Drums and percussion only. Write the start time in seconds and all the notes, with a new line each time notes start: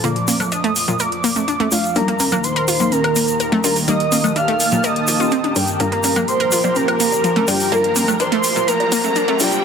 0.04 closed hi-hat, shaker
0.16 closed hi-hat
0.28 open hi-hat, high conga, shaker
0.40 closed hi-hat, low conga, high woodblock, shaker
0.52 closed hi-hat, shaker
0.64 closed hi-hat
0.76 open hi-hat, shaker
0.88 low conga, shaker
0.99 closed hi-hat, shaker
1.12 closed hi-hat
1.24 open hi-hat, shaker
1.36 closed hi-hat, high conga, shaker
1.48 closed hi-hat, shaker
1.60 closed hi-hat, high conga
1.72 open hi-hat, shaker
1.84 closed hi-hat, shaker
1.95 closed hi-hat, shaker
2.08 closed hi-hat
2.20 open hi-hat, high conga, shaker
2.31 closed hi-hat, low conga, high woodblock, shaker
2.44 closed hi-hat, shaker
2.56 closed hi-hat
2.68 open hi-hat, shaker
2.80 closed hi-hat, low conga, shaker
2.92 closed hi-hat, high conga, shaker
3.04 closed hi-hat, high woodblock
3.16 open hi-hat, shaker
3.28 closed hi-hat, shaker
3.40 closed hi-hat, shaker
3.52 closed hi-hat, high conga, low conga
3.64 open hi-hat, shaker
3.76 open hi-hat, shaker
3.88 closed hi-hat, shaker
4.00 closed hi-hat
4.12 open hi-hat, high conga, shaker
4.24 closed hi-hat, low conga, high woodblock, shaker
4.36 closed hi-hat, shaker
4.48 closed hi-hat
4.60 open hi-hat, shaker
4.72 closed hi-hat, low conga, shaker
4.84 closed hi-hat, shaker
4.96 closed hi-hat
5.08 open hi-hat, shaker
5.20 high conga, shaker
5.31 closed hi-hat, shaker
5.44 closed hi-hat, high conga
5.56 open hi-hat, shaker
5.67 closed hi-hat, shaker
5.80 closed hi-hat, shaker
5.92 closed hi-hat
6.04 open hi-hat, high bongo, high conga, shaker
6.16 closed hi-hat, low conga, high woodblock, shaker
6.28 closed hi-hat, shaker
6.40 closed hi-hat
6.52 open hi-hat, shaker
6.64 high bongo, low conga, shaker
6.76 closed hi-hat, high conga, shaker
6.88 closed hi-hat, high woodblock
7.00 open hi-hat, shaker
7.12 closed hi-hat, high bongo, shaker
7.24 closed hi-hat, shaker
7.36 closed hi-hat, high conga, low conga
7.48 open hi-hat, shaker
7.60 open hi-hat, shaker
7.72 closed hi-hat, high bongo, shaker
7.84 closed hi-hat
7.96 open hi-hat, high conga, shaker
8.08 closed hi-hat, low conga, high woodblock, shaker
8.20 closed hi-hat, high bongo, shaker
8.32 closed hi-hat
8.44 open hi-hat, shaker
8.56 closed hi-hat, low conga, shaker
8.68 closed hi-hat, shaker
8.80 closed hi-hat, high bongo
8.92 open hi-hat, shaker
9.04 closed hi-hat, high conga, shaker
9.16 closed hi-hat, shaker
9.28 closed hi-hat, high bongo, high conga
9.40 open hi-hat, shaker
9.52 closed hi-hat, shaker